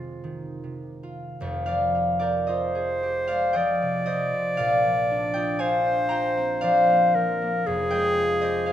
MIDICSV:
0, 0, Header, 1, 3, 480
1, 0, Start_track
1, 0, Tempo, 1185771
1, 569, Time_signature, 3, 2, 24, 8
1, 569, Tempo, 1075269
1, 1529, Tempo, 1027397
1, 3944, End_track
2, 0, Start_track
2, 0, Title_t, "Clarinet"
2, 0, Program_c, 0, 71
2, 0, Note_on_c, 0, 65, 81
2, 315, Note_off_c, 0, 65, 0
2, 1056, Note_on_c, 0, 72, 79
2, 1534, Note_on_c, 0, 74, 85
2, 1541, Note_off_c, 0, 72, 0
2, 2486, Note_on_c, 0, 72, 81
2, 2494, Note_off_c, 0, 74, 0
2, 2964, Note_off_c, 0, 72, 0
2, 2966, Note_on_c, 0, 72, 80
2, 3208, Note_on_c, 0, 70, 75
2, 3215, Note_off_c, 0, 72, 0
2, 3449, Note_on_c, 0, 68, 103
2, 3456, Note_off_c, 0, 70, 0
2, 3944, Note_off_c, 0, 68, 0
2, 3944, End_track
3, 0, Start_track
3, 0, Title_t, "Harp"
3, 0, Program_c, 1, 46
3, 0, Note_on_c, 1, 41, 48
3, 0, Note_on_c, 1, 48, 35
3, 0, Note_on_c, 1, 51, 32
3, 0, Note_on_c, 1, 56, 40
3, 0, Note_on_c, 1, 65, 35
3, 91, Note_off_c, 1, 51, 0
3, 96, Note_on_c, 1, 51, 41
3, 253, Note_off_c, 1, 48, 0
3, 258, Note_on_c, 1, 48, 33
3, 413, Note_off_c, 1, 65, 0
3, 418, Note_on_c, 1, 65, 35
3, 568, Note_off_c, 1, 41, 0
3, 569, Note_on_c, 1, 29, 59
3, 573, Note_on_c, 1, 41, 64
3, 591, Note_off_c, 1, 48, 0
3, 591, Note_off_c, 1, 51, 0
3, 682, Note_on_c, 1, 77, 90
3, 687, Note_on_c, 1, 74, 59
3, 693, Note_on_c, 1, 53, 45
3, 806, Note_off_c, 1, 65, 0
3, 811, Note_on_c, 1, 65, 47
3, 915, Note_off_c, 1, 74, 0
3, 921, Note_on_c, 1, 74, 78
3, 927, Note_on_c, 1, 70, 63
3, 932, Note_on_c, 1, 67, 44
3, 1043, Note_on_c, 1, 75, 73
3, 1048, Note_off_c, 1, 65, 0
3, 1049, Note_on_c, 1, 72, 55
3, 1053, Note_on_c, 1, 65, 56
3, 1131, Note_off_c, 1, 74, 0
3, 1169, Note_on_c, 1, 68, 60
3, 1289, Note_off_c, 1, 67, 0
3, 1294, Note_on_c, 1, 67, 48
3, 1398, Note_off_c, 1, 77, 0
3, 1403, Note_on_c, 1, 77, 91
3, 1407, Note_on_c, 1, 74, 61
3, 1409, Note_off_c, 1, 56, 0
3, 1415, Note_on_c, 1, 56, 45
3, 1517, Note_off_c, 1, 75, 0
3, 1517, Note_on_c, 1, 79, 95
3, 1522, Note_on_c, 1, 75, 76
3, 1523, Note_off_c, 1, 53, 0
3, 1529, Note_on_c, 1, 53, 49
3, 1652, Note_on_c, 1, 48, 45
3, 1757, Note_off_c, 1, 75, 0
3, 1763, Note_off_c, 1, 72, 0
3, 1763, Note_on_c, 1, 75, 89
3, 1769, Note_off_c, 1, 53, 0
3, 1769, Note_on_c, 1, 72, 65
3, 1775, Note_on_c, 1, 53, 44
3, 1889, Note_off_c, 1, 48, 0
3, 1895, Note_on_c, 1, 48, 47
3, 1997, Note_off_c, 1, 77, 0
3, 2003, Note_off_c, 1, 74, 0
3, 2003, Note_on_c, 1, 77, 99
3, 2009, Note_on_c, 1, 34, 62
3, 2010, Note_on_c, 1, 74, 75
3, 2013, Note_on_c, 1, 46, 68
3, 2028, Note_off_c, 1, 75, 0
3, 2028, Note_off_c, 1, 79, 0
3, 2032, Note_off_c, 1, 68, 0
3, 2034, Note_off_c, 1, 29, 0
3, 2034, Note_off_c, 1, 48, 0
3, 2035, Note_off_c, 1, 67, 0
3, 2036, Note_off_c, 1, 41, 0
3, 2036, Note_off_c, 1, 56, 0
3, 2126, Note_off_c, 1, 53, 0
3, 2132, Note_on_c, 1, 53, 47
3, 2253, Note_on_c, 1, 62, 52
3, 2360, Note_on_c, 1, 79, 92
3, 2367, Note_off_c, 1, 65, 0
3, 2367, Note_on_c, 1, 75, 71
3, 2373, Note_on_c, 1, 65, 50
3, 2478, Note_off_c, 1, 77, 0
3, 2479, Note_on_c, 1, 80, 103
3, 2484, Note_on_c, 1, 77, 76
3, 2486, Note_off_c, 1, 62, 0
3, 2491, Note_on_c, 1, 62, 58
3, 2567, Note_off_c, 1, 79, 0
3, 2601, Note_off_c, 1, 72, 0
3, 2606, Note_on_c, 1, 72, 59
3, 2712, Note_on_c, 1, 82, 98
3, 2716, Note_off_c, 1, 65, 0
3, 2718, Note_on_c, 1, 79, 81
3, 2721, Note_off_c, 1, 70, 0
3, 2722, Note_on_c, 1, 65, 55
3, 2846, Note_on_c, 1, 60, 53
3, 2888, Note_off_c, 1, 80, 0
3, 2950, Note_off_c, 1, 77, 0
3, 2954, Note_off_c, 1, 74, 0
3, 2955, Note_on_c, 1, 77, 112
3, 2959, Note_on_c, 1, 74, 78
3, 2960, Note_off_c, 1, 53, 0
3, 2965, Note_on_c, 1, 53, 60
3, 3089, Note_on_c, 1, 58, 49
3, 3204, Note_off_c, 1, 53, 0
3, 3209, Note_on_c, 1, 53, 53
3, 3326, Note_off_c, 1, 58, 0
3, 3332, Note_on_c, 1, 58, 51
3, 3447, Note_on_c, 1, 29, 68
3, 3451, Note_on_c, 1, 41, 68
3, 3460, Note_off_c, 1, 82, 0
3, 3464, Note_off_c, 1, 74, 0
3, 3465, Note_off_c, 1, 34, 0
3, 3465, Note_off_c, 1, 75, 0
3, 3467, Note_off_c, 1, 46, 0
3, 3468, Note_off_c, 1, 62, 0
3, 3470, Note_off_c, 1, 58, 0
3, 3555, Note_off_c, 1, 79, 0
3, 3561, Note_on_c, 1, 79, 98
3, 3565, Note_on_c, 1, 75, 71
3, 3571, Note_on_c, 1, 56, 53
3, 3684, Note_off_c, 1, 65, 0
3, 3689, Note_on_c, 1, 65, 58
3, 3792, Note_off_c, 1, 75, 0
3, 3797, Note_off_c, 1, 72, 0
3, 3798, Note_on_c, 1, 75, 92
3, 3803, Note_on_c, 1, 72, 66
3, 3811, Note_on_c, 1, 67, 60
3, 3908, Note_off_c, 1, 77, 0
3, 3913, Note_on_c, 1, 77, 93
3, 3914, Note_off_c, 1, 72, 0
3, 3919, Note_on_c, 1, 72, 69
3, 3925, Note_on_c, 1, 68, 58
3, 3944, Note_off_c, 1, 29, 0
3, 3944, Note_off_c, 1, 41, 0
3, 3944, Note_off_c, 1, 53, 0
3, 3944, Note_off_c, 1, 56, 0
3, 3944, Note_off_c, 1, 60, 0
3, 3944, Note_off_c, 1, 65, 0
3, 3944, Note_off_c, 1, 67, 0
3, 3944, Note_off_c, 1, 68, 0
3, 3944, Note_off_c, 1, 72, 0
3, 3944, Note_off_c, 1, 75, 0
3, 3944, Note_off_c, 1, 77, 0
3, 3944, Note_off_c, 1, 79, 0
3, 3944, End_track
0, 0, End_of_file